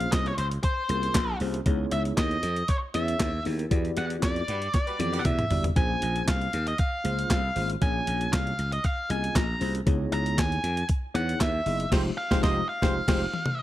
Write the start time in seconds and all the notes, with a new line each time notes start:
Already playing: A#3 C#4 F4 G#4 C5 F5
0.01 closed hi-hat
0.12 C2 D#5, kick, snare, clap, closed hi-hat
0.26 C#5, closed hi-hat
0.38 C#2 C5, closed hi-hat
0.51 closed hi-hat
0.63 C5, kick, closed hi-hat
0.89 C2 A#3 C#4 F4 G#4 A#4, closed hi-hat
1.03 closed hi-hat
1.15 A#1, kick, snare, clap, closed hi-hat
1.40 C2 A#3 C#4 F4 G#4 C5, open hi-hat
1.54 closed hi-hat
1.66 C#2 B3 D#4 E4 G#4 C#5, kick, closed hi-hat
1.91 C#2 E5, closed hi-hat
2.05 closed hi-hat
2.17 D#2 D#5, kick, snare, clap, closed hi-hat
2.31 closed hi-hat
2.43 F2, closed hi-hat
2.56 closed hi-hat
2.68 C#5, kick, closed hi-hat
2.94 E2 B3 C#4 E4 G#4 C#5 E5, closed hi-hat
3.08 closed hi-hat
3.20 D#2, kick, snare, clap, closed hi-hat
3.45 D#2 B3 D#4 E4 G#4 A#4, open hi-hat
3.59 closed hi-hat
3.70 E2 B3 E4 F#4 G4 D5, kick, closed hi-hat
3.85 closed hi-hat
3.97 E2 F#5, closed hi-hat
4.10 closed hi-hat
4.22 F2 D5, kick, snare, clap, closed hi-hat
4.36 closed hi-hat
4.48 G2 G3 F#4 B4, closed hi-hat
4.62 closed hi-hat
4.74 D5, kick, snare, closed hi-hat
4.87 G3 F#4 B4, closed hi-hat
4.99 F2 B3 E4 F#4 G4 D5, closed hi-hat, high tom
5.13 B3 G4 D5, closed hi-hat
5.19 F#5
5.25 E2 E5, kick, closed hi-hat, mid tom
5.39 closed hi-hat, mid tom
5.50 G1 B3 E4 F#4 G4 D5, floor tom, open hi-hat
5.64 closed hi-hat, floor tom
5.76 A#1 A#3 C#4 F4 G#4 C5 G#5, kick, closed hi-hat
6.02 A#1, closed hi-hat
6.16 closed hi-hat
6.28 C2 F5, kick, snare, clap, closed hi-hat
6.41 closed hi-hat
6.53 D#2, closed hi-hat
6.67 D#5, closed hi-hat
6.78 F5, kick, closed hi-hat
7.04 C#2 A#3 C#4 F4 G#4 C5, closed hi-hat
7.19 closed hi-hat
7.30 C2 F5, kick, snare, clap, closed hi-hat
7.55 G#1 A#3 C#4 F4 G#4 C5, open hi-hat
7.70 closed hi-hat
7.81 A#1 A#3 C#4 F4 G#4 C#5 G#5, kick, closed hi-hat
8.07 A#1, closed hi-hat
8.21 closed hi-hat
8.33 C2 F5, kick, snare, clap, closed hi-hat
8.47 closed hi-hat
8.59 C#2, closed hi-hat
8.72 D#5, closed hi-hat
8.84 F5, kick, closed hi-hat
9.09 C2 A#3 C#4 F4 G#4 D#5 G#5, closed hi-hat
9.24 closed hi-hat
9.36 A#1 A#5, kick, snare, clap, closed hi-hat
9.61 C2 A#3 C#4 F4 G#4 C5, open hi-hat
9.75 closed hi-hat
9.86 C#2 B3 D#4 E4 G#4 C#5, kick, closed hi-hat
10.12 C#2 A#5, closed hi-hat
10.26 closed hi-hat
10.38 D#2 G#5, kick, snare, clap, closed hi-hat
10.52 closed hi-hat
10.64 F2, closed hi-hat
10.77 closed hi-hat
10.89 kick, closed hi-hat
11.14 E2 B3 D#4 E4 G#4 C#5 F#5, closed hi-hat
11.29 closed hi-hat
11.40 D#2 E5, kick, snare, clap, closed hi-hat
11.66 F#1 B3 D#4 E4 G#4 D#5, open hi-hat
11.80 closed hi-hat
11.91 F1 G#3 D#4 F4 G4 C5, kick, snare, crash
12.18 F5
12.31 F1 G#3 D#4 F4 G4 C5, kick, snare
12.43 F1 G#3 D#4 F4 G4 C5 D#5, kick, snare
12.69 F5
12.82 F1 G#3 D#4 F4 G4 C5, kick, snare
13.07 F1 G#3 D#4 F4 G4 C5, kick, snare, crash
13.34 high tom
13.46 mid tom